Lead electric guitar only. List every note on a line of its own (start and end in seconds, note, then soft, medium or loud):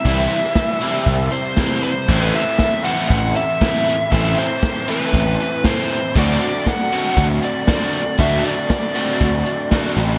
0.00 1.53 E5 medium
1.32 1.82 C5 medium
1.84 2.23 C5 medium
2.23 2.36 B4 medium
2.35 2.84 E5 medium
2.85 3.08 F#5 medium
3.09 3.36 F#5 medium
3.36 4.11 E5 medium
4.12 4.36 E5 medium
4.38 4.90 C5 medium
4.90 5.66 B4 medium
5.66 6.13 C5 medium
6.18 6.70 D5 medium
6.68 7.18 F#5 medium
7.19 7.26 F#5 medium
7.44 8.19 D5 medium
8.20 8.43 E5 medium
8.46 9.94 D5 medium